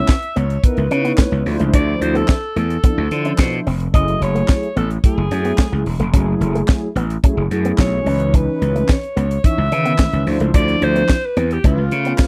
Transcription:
Already playing: analog polysynth B3 C#4 E4 C#5, alto saxophone E5
0.08 kick, snare, clap
0.23 closed hi-hat
0.36 slap bass C#2, clean electric guitar B3, alto saxophone C#5, closed hi-hat
0.50 closed hi-hat
0.64 analog polysynth B3 D#4 E4 A#4, alto saxophone B4, muted clean electric guitar stroke, kick, closed hi-hat
0.77 slap bass C#2, closed hi-hat
0.91 slap bass C#3, analog polysynth B3 D#4 E4 C#5, clean electric guitar C#4, closed hi-hat
1.05 clean electric guitar B3, closed hi-hat
1.18 clean electric guitar A3, kick, snare, clap
1.32 slap bass C#2, muted clean electric guitar stroke
1.46 slap bass D2, analog polysynth F3 D4 E4 C5, open hi-hat
1.60 slap bass C#2, clean electric guitar A3, closed hi-hat
1.73 slap bass D2, clean electric guitar D4, alto saxophone D5, kick, closed hi-hat
2.01 slap bass D2, alto saxophone C5, muted clean electric guitar stroke, closed hi-hat
2.14 clean electric guitar B3, alto saxophone A4, closed hi-hat
2.28 kick, snare, clap
2.56 slap bass E2, clean electric guitar A3, alto saxophone A4, closed hi-hat
2.70 closed hi-hat
2.84 analog polysynth F3 D4 E4 A4, clean electric guitar B3, kick, closed hi-hat
2.98 slap bass D2
3.11 slap bass D3, analog polysynth F3 D4 E4 C5, muted clean electric guitar stroke, closed hi-hat
3.25 clean electric guitar C#4, closed hi-hat
3.38 slap bass B2, kick, snare, clap
3.53 closed hi-hat
3.66 slap bass F1, clean electric guitar C4, open hi-hat
3.80 closed hi-hat
3.94 slap bass F#1, analog polysynth F#3 A3 E4 G#4, clean electric guitar C#4, alto saxophone D#5, kick, closed hi-hat
4.08 closed hi-hat
4.21 slap bass F#1, alto saxophone C#5, muted clean electric guitar stroke, closed hi-hat
4.35 clean electric guitar A3, closed hi-hat
4.48 kick, snare, clap
4.63 closed hi-hat
4.76 slap bass A1, clean electric guitar B3, alto saxophone A4, closed hi-hat
4.90 closed hi-hat
5.04 analog polysynth F#3 A3 E4 A4, alto saxophone G#4, muted clean electric guitar stroke, kick, closed hi-hat
5.17 slap bass F#1
5.31 slap bass F#2, analog polysynth F#3 A3 E4 G#4, clean electric guitar C#4, closed hi-hat
5.45 clean electric guitar B3, closed hi-hat
5.58 clean electric guitar A3, kick, snare, clap
5.72 slap bass C#2, muted clean electric guitar stroke
5.86 slap bass E1, open hi-hat
5.99 slap bass F1, clean electric guitar A3, closed hi-hat
6.13 slap bass F#1, analog polysynth F#3 A3 E4 G#4, clean electric guitar C#4, kick, closed hi-hat
6.41 slap bass F#1, muted clean electric guitar stroke, closed hi-hat
6.55 clean electric guitar A3, closed hi-hat
6.68 kick, snare, clap
6.96 slap bass A1, clean electric guitar B3, closed hi-hat
7.10 closed hi-hat
7.24 analog polysynth F#3 A3 E4 G#4, clean electric guitar C#4, kick, closed hi-hat
7.37 slap bass F#1
7.50 slap bass F#2, analog polysynth F#3 A3 E4 G#4, muted clean electric guitar stroke, closed hi-hat
7.65 clean electric guitar B3, closed hi-hat
7.78 slap bass B1, alto saxophone C#5, kick, snare, clap
8.06 slap bass C#2, analog polysynth E3 C#4 D#4 B4, clean electric guitar C#4, open hi-hat
8.20 closed hi-hat
8.34 clean electric guitar C#4, alto saxophone B4, kick, closed hi-hat
8.62 slap bass C#2, muted clean electric guitar stroke, closed hi-hat
8.75 clean electric guitar A3, closed hi-hat
8.89 alto saxophone C#5, kick, snare, clap
9.03 closed hi-hat
9.16 slap bass C#2, clean electric guitar B3, closed hi-hat
9.31 closed hi-hat
9.44 analog polysynth E3 C#4 D#4 C#5, alto saxophone E5, muted clean electric guitar stroke, kick, closed hi-hat
9.58 slap bass C#2
9.71 slap bass C#3, analog polysynth D#3 E3 C#4 B4, clean electric guitar C#4, closed hi-hat
9.85 clean electric guitar B3, closed hi-hat
9.98 clean electric guitar A3, kick, snare, clap
10.13 slap bass C#2, muted clean electric guitar stroke, closed hi-hat
10.26 slap bass D2, analog polysynth F3 D4 E4 C5, open hi-hat
10.40 slap bass C#2, clean electric guitar A3, closed hi-hat
10.54 slap bass D2, clean electric guitar D4, alto saxophone D5, kick, closed hi-hat
10.68 closed hi-hat
10.82 slap bass D2, alto saxophone C5, muted clean electric guitar stroke, closed hi-hat
10.95 clean electric guitar B3, closed hi-hat
11.09 kick, snare, clap
11.25 alto saxophone B4
11.37 slap bass E2, clean electric guitar C4, closed hi-hat
11.51 alto saxophone G4, closed hi-hat
11.64 slap bass C#2, analog polysynth A3 C#4 F4 B4, clean electric guitar C#4, alto saxophone F4, kick, closed hi-hat
11.78 slap bass C#2
11.91 slap bass C#3, analog polysynth A3 C#4 F4 B4, muted clean electric guitar stroke, closed hi-hat
12.05 clean electric guitar B3, closed hi-hat
12.18 kick, snare, clap

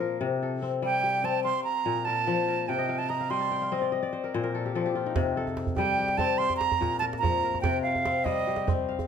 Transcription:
Already playing: kora A#2 F3 C4
0.00 kora A#4
0.21 kora C3
0.43 kora A4
0.62 kora C4
0.82 kora G3, flute G5
1.03 kora G4
1.24 kora C4, flute A5
1.44 kora F5, flute C6
1.64 flute A#5
1.86 kora A#2
2.05 kora A#4, flute A5
2.27 kora F3
2.48 kora A#4
2.69 kora C3, flute G5
2.79 kora D#5
2.89 kora F5
2.98 kora G5, flute A5
3.09 kora D#5, flute A#5
3.21 kora F5
3.30 kora G3 G5, flute C6
3.41 kora A5
3.52 kora G5
3.62 kora F5
3.72 kora C4 D#5
3.82 kora D5
3.92 kora D#5
4.03 kora D5
4.13 kora C5
4.24 kora A#4
4.34 kora A#2 C5
4.43 kora A#4
4.55 kora A4
4.66 kora G4
4.75 kora F3 A4
4.86 kora G4
4.95 kora F4
5.06 kora D#4
5.16 kora C3, djembe slap, djembe bass
5.37 kora A4
5.47 djembe tone
5.57 djembe slap
5.67 djembe bass
5.76 kora G3, flute G5, djembe tone
5.99 kora G4
6.08 djembe slap
6.17 kora C4, flute A5, djembe slap, djembe tone
6.38 kora F5, flute C6
6.50 djembe tone
6.57 flute A#5
6.61 djembe slap
6.72 djembe bass
6.81 kora A#2, djembe tone
6.99 kora A#4, flute A5, djembe slap
7.13 djembe slap
7.19 kora F3, flute A#5
7.24 djembe tone, djembe bass
7.43 kora A#4
7.55 djembe slap, djembe tone
7.61 kora C3, flute G5, djembe slap, djembe bass
7.82 flute F5
7.95 djembe tone
8.05 kora C4, djembe slap
8.24 kora G3, flute D#5, djembe tone
8.47 kora G4
8.56 djembe slap
8.67 kora C4, djembe slap, djembe tone, djembe bass
8.89 kora F5
8.99 djembe tone

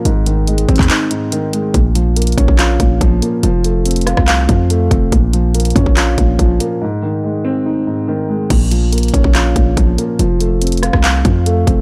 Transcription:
0.05 808-style bass G#1, grand piano G#2, closed hi-hat
0.26 grand piano D#3, closed hi-hat
0.47 grand piano G#3, closed hi-hat
0.58 closed hi-hat
0.69 808-style bass G#1, grand piano C4, kick, closed hi-hat
0.76 808-style bass D#2, kick, clap, closed hi-hat
0.83 closed hi-hat
0.90 grand piano D#4, clap, closed hi-hat
1.11 grand piano G#2, closed hi-hat
1.32 grand piano D#3, closed hi-hat
1.53 grand piano G#3, closed hi-hat
1.74 808-style bass A#1, grand piano A#2, kick, closed hi-hat
1.95 grand piano F3, closed hi-hat
2.16 grand piano A#3, closed hi-hat
2.22 closed hi-hat
2.27 closed hi-hat
2.32 closed hi-hat
2.38 808-style bass A#1, grand piano C#4, kick, closed hi-hat
2.48 808-style bass A#1, kick
2.59 grand piano F4, clap, closed hi-hat
2.80 808-style bass A#1, grand piano A#2, kick, closed hi-hat
3.01 808-style bass A#1, grand piano F3, kick, closed hi-hat
3.22 grand piano A#3, closed hi-hat
3.43 808-style bass F1, grand piano F3, closed hi-hat
3.64 grand piano A3, closed hi-hat
3.85 grand piano C4, closed hi-hat
3.91 closed hi-hat
3.96 closed hi-hat
4.01 closed hi-hat
4.07 grand piano F4, cross-stick, closed hi-hat
4.17 808-style bass C2, kick, cross-stick
4.28 grand piano F5, clap, closed hi-hat
4.49 808-style bass F2, grand piano F3, kick, closed hi-hat
4.70 grand piano A3, closed hi-hat
4.91 808-style bass F1, grand piano C4, kick, closed hi-hat
5.12 808-style bass A#1, grand piano A#2, kick, closed hi-hat
5.33 grand piano F3, closed hi-hat
5.55 grand piano A#3, closed hi-hat
5.60 closed hi-hat
5.65 closed hi-hat
5.70 closed hi-hat
5.76 808-style bass F2, grand piano C#4, kick, closed hi-hat
5.86 808-style bass A#1, kick
5.97 grand piano F4, clap, closed hi-hat
6.18 808-style bass A#1, grand piano A#2, kick, closed hi-hat
6.39 808-style bass A#1, grand piano F3, kick, closed hi-hat
6.60 grand piano A#3, closed hi-hat
6.81 grand piano G#2
7.02 grand piano D#3
7.24 grand piano G#3
7.45 grand piano C4
7.66 grand piano D#4
7.87 grand piano G#2
8.08 grand piano D#3
8.29 grand piano G#3
8.50 808-style bass A#1, grand piano A#2, kick, closed hi-hat, crash
8.71 grand piano F3, closed hi-hat
8.92 grand piano A#3, closed hi-hat
8.98 closed hi-hat
9.03 closed hi-hat
9.08 closed hi-hat
9.14 808-style bass A#1, grand piano C#4, kick, closed hi-hat
9.24 808-style bass A#1, kick
9.35 grand piano F4, clap, closed hi-hat
9.56 808-style bass A#1, grand piano A#2, kick, closed hi-hat
9.77 808-style bass A#1, grand piano F3, kick, closed hi-hat
9.98 grand piano A#3, closed hi-hat
10.19 808-style bass F1, grand piano F3, closed hi-hat
10.40 grand piano A3, closed hi-hat
10.61 grand piano C4, closed hi-hat
10.67 closed hi-hat
10.72 closed hi-hat
10.77 closed hi-hat
10.83 grand piano F4, cross-stick, closed hi-hat
10.93 808-style bass C2, kick, cross-stick
11.04 grand piano F5, clap, closed hi-hat
11.25 808-style bass F2, grand piano F3, kick, closed hi-hat
11.46 grand piano A3, closed hi-hat
11.67 808-style bass F1, grand piano C4, kick, closed hi-hat

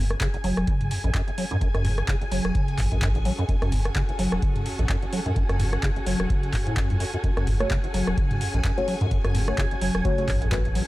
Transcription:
Already playing: sub bass F#1, string section C#4, string machine G#5
0.00 string section F#4
0.11 string section A4, cross-stick, closed hi-hat
0.21 sub bass F#1, acid bass C#3, kick, clap, closed hi-hat
0.34 acid bass F#1, closed hi-hat
0.39 string section F#5
0.44 sub bass F#1, acid bass F#3, open hi-hat
0.57 sub bass E1, cross-stick, closed hi-hat
0.67 acid bass C#3, kick, closed hi-hat
0.81 closed hi-hat, mid tom
0.91 acid bass E2, open hi-hat
1.04 sub bass A1, acid bass F#2, closed hi-hat
1.14 acid bass F#2, kick, clap, closed hi-hat
1.28 acid bass F#1, closed hi-hat
1.38 acid bass F#3, open hi-hat
1.51 acid bass F#2, closed hi-hat, mid tom
1.61 sub bass F#1, acid bass F#2, kick, closed hi-hat
1.74 sub bass F#1, acid bass F#2, cross-stick, closed hi-hat
1.85 acid bass E2, mid tom, open hi-hat
1.98 cross-stick, closed hi-hat
2.08 sub bass F#1, acid bass C#3, kick, clap, closed hi-hat
2.21 acid bass F#1, closed hi-hat
2.31 sub bass F#1, acid bass F#3, open hi-hat
2.45 sub bass E1, cross-stick, closed hi-hat
2.55 acid bass C#3, kick, closed hi-hat
2.68 closed hi-hat
2.78 sub bass A1, acid bass E2, kick, clap, mid tom, open hi-hat
2.92 acid bass F#2, closed hi-hat
3.02 acid bass F#2, kick, clap, closed hi-hat, mid tom
3.15 acid bass F#1, closed hi-hat
3.25 acid bass F#3, open hi-hat
3.39 acid bass F#2, closed hi-hat
3.49 sub bass F#1, acid bass F#2, kick, closed hi-hat
3.62 sub bass F#1, acid bass F#2, cross-stick, closed hi-hat
3.72 acid bass E2, kick, mid tom, open hi-hat
3.85 cross-stick, closed hi-hat
3.95 sub bass F#1, acid bass C#3, kick, clap, closed hi-hat
4.09 acid bass F#1, closed hi-hat
4.19 sub bass F#1, acid bass F#3, open hi-hat
4.32 sub bass E1, cross-stick, closed hi-hat
4.42 acid bass C#3, kick, closed hi-hat
4.56 closed hi-hat, mid tom
4.66 acid bass E2, open hi-hat
4.79 sub bass A1, acid bass F#2, closed hi-hat
4.89 acid bass F#2, kick, clap, closed hi-hat
5.02 acid bass F#1, closed hi-hat
5.13 acid bass F#3, open hi-hat
5.26 acid bass F#2, closed hi-hat, mid tom
5.36 sub bass F#1, acid bass F#2, kick, closed hi-hat
5.49 sub bass F#1, acid bass F#2, cross-stick, closed hi-hat
5.60 acid bass E2, mid tom, open hi-hat
5.73 cross-stick, closed hi-hat
5.83 sub bass F#1, acid bass C#3, kick, clap, closed hi-hat
5.96 acid bass F#1, closed hi-hat
6.06 sub bass F#1, acid bass F#3, open hi-hat
6.20 sub bass E1, cross-stick, closed hi-hat
6.30 acid bass C#3, kick, closed hi-hat
6.43 closed hi-hat
6.53 acid bass F#2, kick, clap, mid tom, open hi-hat
6.67 acid bass A2, closed hi-hat
6.77 acid bass F#2, kick, clap, closed hi-hat, mid tom
6.90 sub bass F#2, acid bass B2, closed hi-hat
7.00 acid bass F#2, open hi-hat
7.14 acid bass F#2, closed hi-hat
7.24 sub bass F#1, acid bass F#2, string machine G#5, kick, closed hi-hat
7.37 sub bass F#1, acid bass F#2, cross-stick, closed hi-hat
7.47 acid bass E2, kick, mid tom, open hi-hat
7.60 synth stab A3 F#4 C#5, cross-stick, closed hi-hat
7.71 sub bass F#1, acid bass C#3, kick, clap, closed hi-hat
7.84 acid bass F#1, closed hi-hat
7.94 sub bass F#1, acid bass F#3, open hi-hat
8.07 sub bass E1, cross-stick, closed hi-hat
8.17 acid bass C#3, kick, closed hi-hat
8.31 closed hi-hat, mid tom
8.41 acid bass E2, open hi-hat
8.54 sub bass A1, acid bass F#2, closed hi-hat
8.64 acid bass F#2, kick, clap, closed hi-hat
8.78 acid bass F#1, synth stab A3 F#4 C#5, closed hi-hat
8.88 acid bass F#3, open hi-hat
9.01 acid bass F#2, closed hi-hat, mid tom
9.11 sub bass F#1, acid bass F#2, kick, closed hi-hat
9.24 sub bass F#1, acid bass F#2, cross-stick, closed hi-hat
9.35 acid bass E2, mid tom, open hi-hat
9.48 synth stab A3 F#4 C#5, cross-stick
9.58 sub bass F#1, acid bass C#3, kick, clap, closed hi-hat
9.71 acid bass F#1, closed hi-hat
9.81 sub bass F#1, acid bass F#3, open hi-hat
9.95 sub bass E1, cross-stick
10.05 acid bass C#3, synth stab A3 F#4 C#5, kick, closed hi-hat
10.18 synth stab A3 F#4 C#5, closed hi-hat
10.28 sub bass A1, acid bass E2, kick, clap, mid tom, open hi-hat
10.42 acid bass F#2, closed hi-hat
10.52 acid bass F#2, synth stab A3 F#4 B4, kick, clap, closed hi-hat, mid tom
10.65 acid bass F#1, closed hi-hat
10.75 acid bass F#3, open hi-hat

